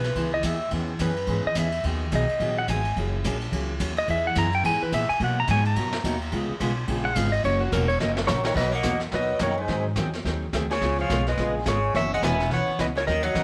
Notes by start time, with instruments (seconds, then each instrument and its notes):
Already playing: upright bass B1, pedal steel guitar B4
0.04 snare, ride
0.15 upright bass C#2, steel-string acoustic guitar E3 B3 E4 G#4, kick, ride
0.34 pedal steel guitar D#5
0.43 upright bass D#2, steel-string acoustic guitar E3 B3 E4 G#4, pedal steel guitar E5, kick, hi-hat pedal, ride
0.71 upright bass E2, steel-string acoustic guitar E3 B3 C#4 G#4, kick, ride
0.99 upright bass F#2, steel-string acoustic guitar E3 B3 C#4 G#4, pedal steel guitar B4, kick, hi-hat pedal, ride
1.16 ride
1.27 upright bass G#2, steel-string acoustic guitar E3 B3 C#4 G#4, kick, ride
1.46 pedal steel guitar D#5, muted upright bass stroke
1.55 upright bass E2, steel-string acoustic guitar E3 B3 C#4 G#4, kick, hi-hat pedal, ride
1.59 pedal steel guitar E5
1.72 ride
1.83 upright bass D#2, steel-string acoustic guitar D#3 F#3 B3 D#4 G#4, kick, ride
2.12 upright bass B1, steel-string acoustic guitar D#3 F#3 B3 D#4 G#4, pedal steel guitar D#5, kick, hi-hat pedal, ride
2.29 ride
2.40 upright bass A#1, steel-string acoustic guitar D#3 F#3 B3 D#4 G#4, kick, ride
2.58 pedal steel guitar F#5
2.68 upright bass G#1, steel-string acoustic guitar D#3 F#3 B3 D#4 G#4, pedal steel guitar G#5, kick, hi-hat pedal, ride
2.85 ride
2.96 upright bass F#1, steel-string acoustic guitar F#3 A#3 C#4 G#4, kick, ride
3.24 upright bass A#1, steel-string acoustic guitar F#3 A#3 C#4 G#4, kick, hi-hat pedal, ride
3.41 ride
3.52 upright bass C#2, steel-string acoustic guitar F#3 A#3 C#4 G#4, kick, ride
3.79 upright bass D#2, steel-string acoustic guitar F#3 A#3 C#4 G#4, kick, hi-hat pedal, ride
3.97 pedal steel guitar D#5, ride
4.07 upright bass E2, steel-string acoustic guitar E3 B3 E4 G#4, pedal steel guitar E5, kick, ride
4.27 pedal steel guitar F#5
4.35 upright bass F#2, steel-string acoustic guitar E3 B3 E4 G#4, pedal steel guitar A#5, kick, hi-hat pedal, ride
4.52 pedal steel guitar G5, ride
4.63 upright bass G#2, steel-string acoustic guitar E3 B3 E4 G#4, pedal steel guitar G#5, kick, ride
4.82 pedal steel guitar B4, muted upright bass stroke
4.92 upright bass A#2, steel-string acoustic guitar E3 B3 E4 G#4, pedal steel guitar E5, kick, hi-hat pedal, ride
5.09 pedal steel guitar G#5, muted upright bass stroke, ride
5.20 steel-string acoustic guitar B2 F#3 A#3 D#4 F#4, upright bass B2, kick, ride
5.24 pedal steel guitar F#5
5.40 pedal steel guitar A#5
5.47 upright bass G#2, steel-string acoustic guitar B2 F#3 A#3 D#4 F#4, pedal steel guitar G#5, kick, hi-hat pedal, ride
5.65 pedal steel guitar A5, ride
5.75 upright bass F#2, steel-string acoustic guitar B2 F#3 A#3 D#4 F#4, pedal steel guitar A#5, kick, ride
5.93 snare
6.04 upright bass D#2, steel-string acoustic guitar B2 F#3 A#3 D#4 F#4, kick, hi-hat pedal, ride
6.21 ride
6.32 upright bass C#2, steel-string acoustic guitar C#3 G#3 B3 F4 G#4, kick, ride
6.50 muted upright bass stroke
6.60 upright bass B1, steel-string acoustic guitar C#3 G#3 B3 F4 G#4, kick, hi-hat pedal, ride
6.88 upright bass A#1, steel-string acoustic guitar C#3 G#3 B3 F4 G#4, kick, ride
7.05 pedal steel guitar F#5
7.15 upright bass G#1, steel-string acoustic guitar C#3 G#3 B3 F4 G#4, pedal steel guitar F5, kick, hi-hat pedal, ride
7.32 pedal steel guitar D#5, ride
7.44 upright bass F#1, steel-string acoustic guitar C#3 F#3 A#3 C#4 F#4, pedal steel guitar C#5, kick, ride
7.60 pedal steel guitar F#4
7.72 upright bass E1, steel-string acoustic guitar C#3 F#3 A#3 C#4 F#4, pedal steel guitar A#4, kick, hi-hat pedal, ride
7.88 pedal steel guitar C#5, ride
8.00 upright bass F#1, steel-string acoustic guitar C#3 F#3 A#3 C#4 F#4, pedal steel guitar D#5, snare
8.17 snare
8.27 upright bass A#1, steel-string acoustic guitar C#3 F#3 A#3 C#4 F#4, sitar F#3, pedal steel guitar A#4 C#5, snare, hi-hat pedal
8.44 sitar D#3, pedal steel guitar A#4 C#5, snare
8.54 upright bass B1, steel-string acoustic guitar B2 F#3 A#3 D#4 F#4, sitar F#3, pedal steel guitar B4 D#5, brush sweep, kick, snare, crash
8.71 sitar A#3, pedal steel guitar D#5
8.75 pedal steel guitar F#5
8.83 upright bass E2, steel-string acoustic guitar B2 F#3 A#3 D#4 F#4, kick, snare, hi-hat pedal
9.00 snare
9.12 upright bass D#2, steel-string acoustic guitar B2 F#3 A#3 D#4 F#4, sitar F#3, pedal steel guitar B4 D#5, brush sweep, kick, snare
9.39 upright bass F#2, steel-string acoustic guitar B2 F#3 A#3 D#4 F#4, sitar D#3, pedal steel guitar A#4 C#5, kick, snare, hi-hat pedal
9.58 sitar G#2, pedal steel guitar G#4 C5
9.68 upright bass G#2, steel-string acoustic guitar D#3 F#3 C4 D#4 G#4, brush sweep, kick, snare
9.96 upright bass E2, steel-string acoustic guitar D#3 F#3 C4 D#4 G#4, kick, snare, hi-hat pedal
10.13 snare
10.24 upright bass D#2, steel-string acoustic guitar D#3 F#3 C4 D#4 G#4, brush sweep, kick, snare
10.53 upright bass D2, steel-string acoustic guitar D#3 F#3 C4 D#4 G#4, kick, snare, hi-hat pedal
10.70 sitar C#3, pedal steel guitar G#4 C#5, snare
10.81 upright bass C#2, steel-string acoustic guitar C#3 G#3 B3 F4 G#4, brush sweep, kick, snare
10.99 sitar F3, pedal steel guitar C#5 F5
11.09 upright bass B1, steel-string acoustic guitar C#3 G#3 B3 F4 G#4, kick, snare, hi-hat pedal
11.27 sitar G#3, pedal steel guitar B4 D#5, snare
11.37 upright bass A#1, steel-string acoustic guitar C#3 G#3 B3 F4 G#4, brush sweep, kick, snare
11.66 upright bass G#1, steel-string acoustic guitar C#3 G#3 B3 F4 G#4, sitar C#3, pedal steel guitar G#4 C#5, kick, snare, hi-hat pedal
11.94 upright bass F#1, steel-string acoustic guitar B2 E3 B3 C#4 F#4, sitar F#3, pedal steel guitar C#5 E5, brush sweep, kick, snare
12.14 sitar G#3, pedal steel guitar D#5 F#5
12.22 upright bass E1, steel-string acoustic guitar B2 E3 B3 C#4 F#4, sitar B3, pedal steel guitar E5 G#5, kick, snare, hi-hat pedal
12.40 snare
12.50 upright bass B1, steel-string acoustic guitar B2 E3 B3 C#4 F#4, sitar B3, pedal steel guitar C#5 F#5, brush sweep, kick, snare
12.68 muted upright bass stroke
12.79 upright bass C#2, steel-string acoustic guitar B2 E3 B3 C#4 F#4, sitar E3, pedal steel guitar B4 D#5, kick, snare, hi-hat pedal
12.95 sitar C#3, pedal steel guitar A#4 C#5, snare
13.07 upright bass D#2, steel-string acoustic guitar D#3 F#3 C#4 D#4 A#4, sitar D#3, pedal steel guitar A#4 D#5, brush sweep, kick, snare
13.23 sitar F#3, pedal steel guitar D#5 F#5
13.34 upright bass E2, steel-string acoustic guitar D#3 F#3 C#4 D#4 A#4, kick, snare, hi-hat pedal